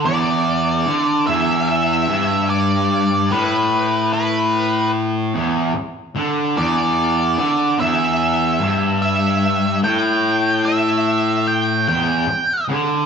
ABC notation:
X:1
M:4/4
L:1/8
Q:1/4=74
K:Em
V:1 name="Lead electric guitar"
d3 e e2 d2 | B2 B2 z4 | d3 e3 e2 | g2 e2 g g2 z |]
V:2 name="Distorted electric guitar" clef=bass
E,,2 D, E,,2 G,,3 | A,,4- A,, E,, z D, | E,,2 D, E,,2 G,,3 | A,,4- A,, E,, z D, |]